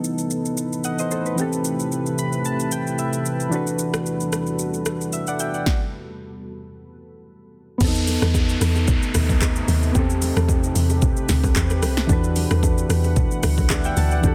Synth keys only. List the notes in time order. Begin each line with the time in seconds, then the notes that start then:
Already playing: E3 B3 D#4 A4
0.85 D#5 F#5
0.99 C5 D#5
1.11 A4 C5
1.26 B4
1.35 E3 C4
1.39 G4 A4
2.19 B5
2.45 A5
2.72 G5
2.99 E5
3.49 E3 D4 F#4
3.54 A4 B4
5.13 E5
5.28 D5 F#5
5.40 E5 G5
5.54 D5 F#5
7.78 B3 C4
7.84 D#4 A4
9.92 B3 G4
9.98 C4 A4
12.07 E3 D4 F#4
12.11 A4 B4
13.70 D5 F#5
13.85 E5 G5
13.97 F#5 A5
14.12 D5 F#5
14.21 E3 D4 F#4
14.26 G4 A4